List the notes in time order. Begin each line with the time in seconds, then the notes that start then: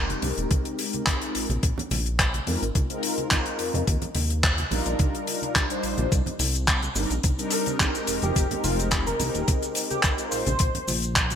Already playing: F1 G#3 C4 D#4 G4 A#4
0.10 closed hi-hat, high conga, shaker
0.21 C2 G#3 C4 D#4 G4 A#4, open hi-hat, low conga, shaker
0.38 D#1, closed hi-hat, shaker
0.51 kick, closed hi-hat, high conga, shaker
0.65 closed hi-hat, shaker
0.79 open hi-hat, shaker
0.93 closed hi-hat, high conga, shaker
1.06 kick, clap, closed hi-hat, shaker
1.21 G#3 C4 D#4 F4 A#4, closed hi-hat, shaker
1.35 A#1, open hi-hat, shaker
1.50 A#1, closed hi-hat, high conga, shaker
1.63 A#1, kick, closed hi-hat, shaker
1.78 closed hi-hat, low conga
1.91 A#1, open hi-hat, high conga, shaker
2.05 closed hi-hat, shaker
2.19 kick, clap, closed hi-hat, shaker
2.34 closed hi-hat, high conga, shaker
2.46 F2 G#3 C4 D#4 F4 A#4, open hi-hat, low conga, shaker
2.62 G#1, closed hi-hat, shaker
2.75 kick, closed hi-hat, high conga, shaker
2.89 G#3 C4 D#4 F4 A#4, closed hi-hat, shaker
3.03 open hi-hat, shaker
3.18 closed hi-hat, high conga, shaker
3.31 G#3 C4 D#4 F4 A#4, kick, clap, closed hi-hat, low conga, shaker
3.46 closed hi-hat, shaker
3.59 F2, open hi-hat, shaker
3.74 F2, closed hi-hat, high conga, shaker
3.87 D#2, kick, closed hi-hat, shaker
4.02 closed hi-hat, low conga, shaker
4.15 D#2, open hi-hat, high conga, shaker
4.30 closed hi-hat, shaker
4.43 kick, clap, closed hi-hat, shaker
4.58 closed hi-hat, high conga, shaker
4.70 A#1 G3 D4 D#4 F4 A#4, open hi-hat, low conga, shaker
4.86 A#1, closed hi-hat, shaker
4.99 kick, closed hi-hat, high conga, shaker
5.14 closed hi-hat, shaker
5.27 open hi-hat, shaker
5.42 closed hi-hat, high conga, shaker
5.55 kick, clap, closed hi-hat, shaker
5.70 G3 D4 D#4 F4 C5, closed hi-hat, shaker
5.83 A#1, open hi-hat, shaker
5.97 A#1, closed hi-hat, high conga, shaker
6.12 C2, kick, closed hi-hat, cabasa, shaker
6.26 closed hi-hat, low conga
6.39 C2, open hi-hat, high conga, cabasa, shaker
6.55 closed hi-hat, cabasa, shaker
6.67 kick, clap, closed hi-hat, cabasa, shaker
6.82 closed hi-hat, high conga, cabasa, shaker
6.95 G1 G3 C4 D4 D#4 A#4, open hi-hat, low conga, cabasa, shaker
7.10 A#1, closed hi-hat, cabasa, shaker
7.23 kick, closed hi-hat, high conga, cabasa, shaker
7.38 G3 C4 D4 D#4 A#4, closed hi-hat, cabasa, shaker
7.51 A#4, open hi-hat, cabasa, shaker
7.66 closed hi-hat, high conga, cabasa, shaker
7.79 G#3 C4 D#4 G4 A#4, kick, clap, closed hi-hat, low conga, cabasa, shaker
7.95 closed hi-hat, cabasa, shaker
8.07 F1, open hi-hat, cabasa, shaker
8.22 F1 G4, closed hi-hat, high conga, cabasa, shaker
8.35 F1, kick, closed hi-hat, cabasa, shaker
8.51 closed hi-hat, low conga
8.64 F1 F4, open hi-hat, high conga, cabasa, shaker
8.80 closed hi-hat, cabasa, shaker
8.91 kick, clap, closed hi-hat, cabasa, shaker
9.07 A#4, closed hi-hat, high conga, cabasa, shaker
9.19 C2 G#3 C4 D#4 G4 A#4, open hi-hat, low conga, cabasa, shaker
9.35 D#1, closed hi-hat, cabasa, shaker
9.48 kick, closed hi-hat, high conga, cabasa, shaker
9.62 closed hi-hat, cabasa, shaker
9.75 open hi-hat, cabasa, shaker
9.90 G4, closed hi-hat, high conga, cabasa, shaker
10.03 kick, clap, closed hi-hat, cabasa, shaker
10.18 G#3 C4 D#4 F4 A#4, closed hi-hat, cabasa, shaker
10.31 A#1 C5, open hi-hat, cabasa, shaker
10.46 A#1, closed hi-hat, high conga, cabasa, shaker
10.59 A#1, kick, closed hi-hat, cabasa, shaker
10.75 closed hi-hat, low conga
10.88 A#1, open hi-hat, high conga, cabasa, shaker
11.02 closed hi-hat, cabasa, shaker
11.16 kick, clap, closed hi-hat, cabasa, shaker
11.30 closed hi-hat, high conga, cabasa, shaker